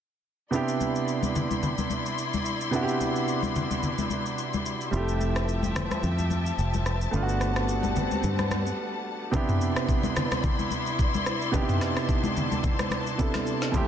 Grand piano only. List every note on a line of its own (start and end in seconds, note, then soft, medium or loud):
0.51 2.68 C3 medium
0.51 2.69 B3 medium
0.51 2.69 D4 medium
0.51 2.70 E4 medium
0.55 2.70 G4 medium
2.71 4.88 C3 medium
2.71 4.89 B3 medium
2.71 4.89 D4 medium
2.71 4.90 E4 medium
2.76 2.82 F#4 medium
2.82 4.94 G4 medium
4.91 4.99 G3 medium
4.91 7.09 C4 medium
4.91 7.10 E4 medium
4.96 7.10 A3 medium
4.96 7.11 G4 medium
7.11 9.29 A3 medium
7.11 9.29 B3 medium
7.11 9.30 D4 medium
7.16 7.22 F4 medium
7.22 9.34 F#4 medium
9.31 11.49 C3 medium
9.31 11.49 B3 medium
9.31 11.50 D4 medium
9.31 11.51 E4 medium
9.36 11.51 G4 medium
11.52 13.15 C3 medium
11.52 13.15 B3 medium
11.52 13.16 D4 medium
11.52 11.62 D#4 medium
11.56 13.17 G4 medium
11.62 13.18 E4 medium
13.18 13.74 C3 medium
13.18 13.74 B3 medium
13.18 13.74 D4 medium
13.18 13.74 E4 medium
13.18 13.75 A4 medium
13.72 13.88 F2 medium
13.72 13.81 G3 medium
13.72 13.88 C4 medium
13.72 13.88 E4 medium
13.77 13.88 A3 medium
13.77 13.88 G4 medium